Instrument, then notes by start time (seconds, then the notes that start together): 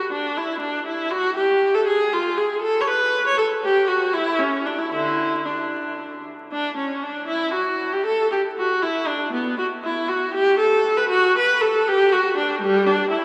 viola
Already playing: F#4
0.12 D4
0.37 E4
0.60 D4
0.86 E4
1.11 F#4
1.37 G4
1.75 A4
1.87 G#4
2.13 F4
2.37 G#4
2.62 A4
2.80 C#5
2.88 B4
3.27 C#5
3.38 A4
3.63 G4
3.88 F#4
4.13 E4
4.39 C#4
4.66 D4
4.78 E4
4.92 D3 E4
5.46 D4
6.52 D4
6.77 C#4
7.03 D4
7.27 E4
7.54 F#4
7.93 G4
8.06 A4
8.32 G4
8.58 F#4
8.82 E4
9.07 D4
9.33 B3
9.58 F#4
9.84 E4
10.08 F#4
10.34 G4
10.58 A4
10.97 B4
11.09 F#4
11.38 B4
11.61 A4
11.87 G4
12.12 F#4
12.37 D4
12.62 G3
12.86 D4
13.10 E4